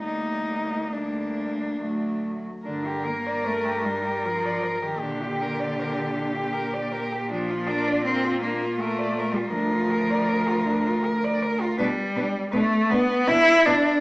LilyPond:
<<
  \new Staff \with { instrumentName = "Cello" } { \time 3/4 \key g \minor \tempo 4 = 79 ees'4 d'4. r8 | bes'2. | g'2. | f'2. |
bes'2. | \key g \major b'8 b'8 b'8 b'8 b'8 b'8 | }
  \new Staff \with { instrumentName = "Cello" } { \time 3/4 \key g \minor bes4 bes4 a8. r16 | d'16 g'16 bes'16 d''16 bes'16 g'16 d'16 g'16 bes'16 d''16 bes'16 g'16 | d'16 g'16 bes'16 d''16 bes'16 g'16 d'16 g'16 bes'16 d''16 bes'16 g'16 | d'16 f'16 bes'16 d''16 bes'16 f'16 d'16 f'16 bes'16 d''16 bes'16 f'16 |
d'16 f'16 bes'16 d''16 bes'16 f'16 d'16 f'16 bes'16 d''16 bes'16 f'16 | \key g \major d'8 d'8 d'8 d'8 d'8 d'8 | }
  \new Staff \with { instrumentName = "Cello" } { \clef bass \time 3/4 \key g \minor g4 g4 fis8. r16 | d8 bes8 a8 g8 f8. ees16 | d2~ d8 r8 | f8 d'8 c'8 bes8 a8. g16 |
f2~ f8 r8 | \key g \major g4 a8 b8 e'8 d'8 | }
  \new Staff \with { instrumentName = "Cello" } { \clef bass \time 3/4 \key g \minor d,2 d,8. r16 | g,2. | bes,2.~ | bes,2. |
d,2. | \key g \major b,8 b,8 b,8 b,8 b,8 b,8 | }
>>